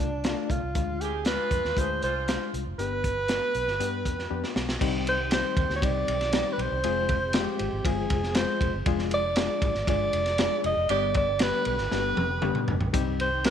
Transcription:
Already playing: D4
0.00 C2
0.24 A3 D4 F4, snare, closed hi-hat
0.50 C2 F4, kick, closed hi-hat
0.63 C2
0.75 D2 G#3 D4 F4, kick, closed hi-hat
1.01 C4 D#4 G4 G#4, closed hi-hat
1.25 G#3 D4 F4 B4, snare, closed hi-hat
1.51 F2, kick, closed hi-hat
1.65 D#2, snare
1.76 D2 G#3 D4 F4 G#4 C5, kick, closed hi-hat
2.02 C2 G#3 D4 F4 C5, closed hi-hat
2.28 G#3 D4 F4, snare, closed hi-hat
2.54 C2, closed hi-hat
2.66 F1
2.78 G1 B3 D4 G4 B4, closed hi-hat
3.04 kick, closed hi-hat
3.28 B3 D4 G4, snare, closed hi-hat
3.54 B1, closed hi-hat
3.67 G1, snare
3.80 G2 B3 D4 G4, closed hi-hat
4.05 F2, kick, closed hi-hat
4.19 snare
4.30 F2 B3 D4 G4
4.44 snare
4.56 B1, snare
4.69 snare
4.80 C2 D#3 G3 C4 D#4 G4, kick, crash
5.07 C5, ride
5.31 G3 C4 D#4 G4 C5, snare, ride
5.57 D#2, kick, ride
5.70 D2, snare
5.76 C#5
5.82 C2 G3 C4 D#4 G4 D5, kick, ride
6.08 B1, ride
6.21 snare, ride
6.33 G3 C4 D#4 G4, snare, ride
6.53 B4
6.58 B1 C5, ride
6.72 C2
6.84 F1 F3 G#3 C4 F4 G#4, ride
7.09 kick, ride
7.33 G#3 C4 F4 G4 C5, snare, ride
7.59 G#1, ride
7.73 G#1
7.85 G1 G#3 C4 F4 G#4, kick, ride
8.10 F1, kick, ride
8.23 snare
8.35 G#3 C4 F4 G#4 C5, snare, ride
8.61 F1, kick, ride
8.74 G1
8.86 F1 G#3 D4 F4 G#4, kick, ride
8.99 snare
9.11 D5, ride
9.36 G#3 D4 F4 G#4, snare, ride
9.62 G#1, kick, ride
9.75 G#1, snare
9.87 G1 G#3 D4 F4 G#4 D5, kick, ride
10.13 F1, ride
10.26 snare, ride
10.38 G#3 D4 F4 G#4, snare, ride
10.64 F1 D#5, ride
10.77 F1
10.89 G1 D3 G3 B3 D4 G4 D5, ride
11.14 D5, kick, ride
11.39 G3 B3 D4 G4 B4, snare, ride
11.65 B1 B4, ride
11.78 G#1, snare
11.91 G1 G3 B3 D4 G4, snare
12.16 F1, high tom
12.42 G3 B3 D4 G4, mid tom
12.55 mid tom
12.68 F1, floor tom
12.81 B1, floor tom
12.93 C2 D#3 G3 C4 D#4 G4, kick, hi-hat pedal, ride
13.20 C5, ride
13.44 G3 C4 D#4 G4 C5, snare, ride

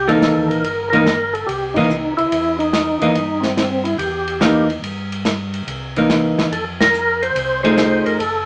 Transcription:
Already playing: C2
0.08 E3 A#3 D#4 A4, ride
0.22 snare, hi-hat pedal, ride
0.36 D#2
0.48 A#1 A#4, ride
0.64 G1, ride
0.90 E3 A#3 D#4 A#4, ride
1.06 snare, hi-hat pedal, ride
1.33 A4, ride
1.46 C2 G4, ride
1.74 E3 A#3 D#4, kick, ride
1.90 hi-hat pedal
2.17 C2 E4, ride
2.32 E2, ride
2.59 D#4, ride
2.73 snare, hi-hat pedal, ride
2.99 E2 E3 A#3 D#4, ride
3.15 G2, ride
3.40 C4, snare, ride
3.57 snare, hi-hat pedal, ride
3.84 E4, ride
3.98 E2 G4, ride
4.28 ride
4.41 E3 A#3 D#4, snare, hi-hat pedal, ride
4.70 ride
4.82 G2, ride
5.12 ride
5.25 snare, hi-hat pedal, ride
5.54 ride
5.67 C2, ride
5.96 E3 A#3 D#4, ride
6.10 snare, hi-hat pedal, ride
6.38 C2, snare, ride
6.51 F2 A4, ride
6.81 A#4, snare, ride
6.94 hi-hat pedal
7.22 C5, ride
7.35 C2, ride
7.63 F3 A3 D#4 G#4 C5, ride
7.77 snare, hi-hat pedal, ride
8.05 F1 A#4, ride
8.18 F#1 A4, ride

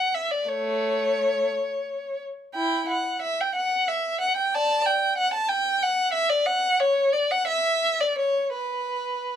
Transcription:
Already playing: F#5
0.14 E5
0.31 D5
0.48 A3 C#5
2.55 E4 G5
2.89 F#5
3.22 E5
3.41 G5
3.55 F#5
3.88 E5
4.21 F#5
4.37 G5
4.54 D5 A5
4.86 G5
5.18 F#5
5.34 A5
5.49 G5
5.82 F#5
6.13 E5
6.30 D5
6.46 F#5
6.80 C#5
7.13 D5
7.31 F#5
7.47 E5
8.00 D5
8.18 C#5
8.54 B4

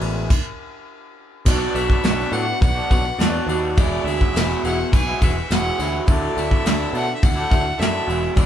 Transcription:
Already playing: E2 B2 E3 G#3 B3 E4 G#4 B4 D5 E5 G#5 E6
0.01 A1 E3 G#3 B3 G#4, ride
0.30 kick, crash
1.45 B1 B2 F#3 B3 D4 F#4 B4 D5 F#5 D6, kick, crash
1.50 F#4
1.75 B1 B3 D4 F#4 E5, crash
1.90 B3 D4 F#4, kick
2.03 B1 B2 F#3 B3 D4 F#4 B4 D5, snare, crash
2.32 A2 F#3 B3 D4 F#4 B4 E5 F#5, crash
2.47 muted clean electric guitar stroke
2.61 B1 F#3 B3 D4 F#4 B4 D5 F#5, kick, crash
2.75 B3 D4 F#4
2.90 B1 F#3 B3 D4 F#4, kick, crash
3.06 muted clean electric guitar stroke
3.19 E2 B2 F#3 B3 D4 F#4 B4 D5, snare, crash
3.47 D#2 F#3 B3 F#4, crash
3.51 D4 F#4
3.77 E1 E2 B2 F#3 G#3 B3 E4 F#4 G#4 D5 E5 G#5 E6, kick, crash
4.04 D2 B3 F#4 E5, crash
4.08 F#3 G#3
4.21 F#3 G#3 B3 E4, kick
4.34 E1 E2 B2 F#3 G#3 B3 F#4 G#4 E5, snare, crash
4.39 E4
4.64 E1 F#3 G#3 B3 E4 F#4 G#4 E5 F#5, crash
4.80 muted clean electric guitar stroke
4.92 B1 F#3 G#3 B3 F#4 G#4 B4 G#5, kick, crash
5.07 F#3 G#3 B3 E4
5.21 E1 F#3 G#3 B3 E4 F#4 E5, kick, crash
5.37 muted clean electric guitar stroke
5.50 E1 E2 B2 F#3 G#3 B3 E4 F#4 G#4 E5 F#5, snare, crash
5.79 D2 F#3 G#3 B3 E4 F#4, crash
6.07 D2 D3 F#3 A3 D4 E4 F#4 D5 E5 F#5 A5, kick, crash
6.35 D2 A3 E4 F#4, crash
6.39 E5
6.51 A3 D4 E4, kick
6.65 D2 D3 F#3 A3 D4 E4 F#4 D5 E5, snare, crash
6.93 B2 F#3 A3 D4 E4 F#4 D5 E5, crash
6.97 F#5
7.09 muted clean electric guitar stroke
7.16 E5
7.21 D2 D3 A3 E4 F#4 D5 E5 F#5, kick, crash
7.36 A3 D4 E4
7.49 D2 F#3 A3 D4 E4 F#4, kick, crash
7.65 muted clean electric guitar stroke
7.78 F#2 D3 F#3 A3 D4 E4 F#4 D5 E5 F#5, crash
7.82 snare
8.06 E1 E2 B2 F#3 G#3 B3 E4 F#4 G#4 B4 G#5, crash
8.11 F#4 E5
8.35 E1 E2 B2 F#3 G#3 B3 E4 F#4 D5, kick, crash

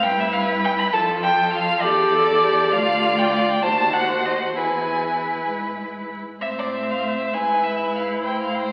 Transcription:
0.03 G2 E4 B4 G5
0.20 E5
0.32 F5
0.64 G5
0.78 B5
0.93 F2 F4 A4 A5
1.23 G5
1.52 F5
1.81 E2 G4 A4 D5
2.14 A4
2.43 G4
2.72 D2 F4 D5 F5
3.18 G5
3.32 F5
3.49 G5
3.62 D#2 F#4 C5 A5
3.93 F#5
4.25 D#5
4.40 F#5
4.55 E2 E4 B4 G#5
5.49 G#2
6.41 A2 C4 C5 E5
6.59 D5
6.73 E5
6.91 F5
7.04 E5
7.33 G#2 E4 B4 G#5
7.64 E5
7.95 F5
8.24 A2 C5 G5
8.42 F5
8.55 G5

